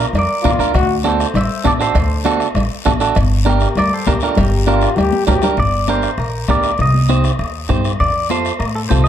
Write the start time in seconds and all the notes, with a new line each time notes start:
Already playing: F4 A#4
0.13 F2 A#4, bombo rim, cowbell, low conga, long guiro
0.19 D5
0.42 E2 D4 F4 A#4, bombo low, bombo rim, high conga, short guiro
0.59 D2 D4 F4 A#4, bombo rim, short guiro
0.74 D2 F#4, bombo low, bombo rim, cowbell, long guiro
1.04 D4 F#4 A4, bombo rim, high conga, short guiro
1.09 C5
1.20 bombo rim, short guiro
1.34 A1 C5 E5, bombo rim, cowbell, low conga, long guiro
1.64 A1 D4 F#4 A4 D5, bombo low, bombo rim, high conga, short guiro
1.79 D4 F#4 A4 C5, bombo rim, short guiro
1.95 D2, bombo low, bombo rim, cowbell, long guiro
2.25 D4 F#4 A4, bombo rim, high conga, short guiro
2.40 bombo rim, short guiro
2.55 A1, bombo rim, cowbell, low conga, long guiro
2.85 A1 D4 F#4 A4, bombo low, bombo rim, high conga, short guiro
3.00 D4 F#4 A4, bombo rim, short guiro
3.15 G1, bombo low, bombo rim, cowbell, long guiro
3.45 D4 G4 A#4, bombo rim, high conga, short guiro
3.49 G4 A#4
3.60 bombo rim, short guiro
3.75 D2 D5, bombo rim, cowbell, low conga, long guiro
3.80 A#4
3.94 A4 C5
4.05 D2 D4 G4 A#4, bombo low, bombo rim, high conga, short guiro
4.20 D4 F4 G4 A4 A#4, bombo rim, short guiro
4.35 G1 G4 A#4, bombo low, bombo rim, cowbell, low conga, long guiro
4.66 D4 F4 G4 A#4, bombo rim, high conga, short guiro
4.81 bombo rim, short guiro
4.96 D2 G4, bombo rim, cowbell, low conga, long guiro
5.13 high conga
5.27 D2 D4 G4 A#4, bombo low, bombo rim, low conga, low timbale, short guiro
5.42 D4 G4 A#4, bombo rim, low conga, short guiro
5.57 G1 D5, bombo low, bombo rim, long guiro
5.88 D4 G4 A#4 C5, bombo rim, high conga, short guiro
6.02 bombo rim, short guiro
6.18 A#1 A#4, bombo rim, long guiro
6.48 D2 D4 G4 A#4 D5, bombo low, bombo rim, high conga, short guiro
6.63 bombo rim, short guiro
6.78 C2 D#5, bombo low, bombo rim, long guiro
6.94 high conga
7.08 D#4 G4 C5, bombo rim, high conga, short guiro
7.24 bombo rim, short guiro
7.39 D#2, bombo rim, long guiro
7.69 G2 D#4 G4 C5, bombo low, bombo rim, high conga, short guiro
7.84 bombo rim, short guiro
8.00 F2 D5, bombo low, bombo rim, long guiro
8.30 F4 A4 C5, bombo rim, high conga, short guiro
8.45 bombo rim, short guiro
8.59 A2 A#4, bombo rim, long guiro
8.75 A4
8.89 C2 F4 A4 C5, bombo low, bombo rim, high conga, short guiro
9.04 D#5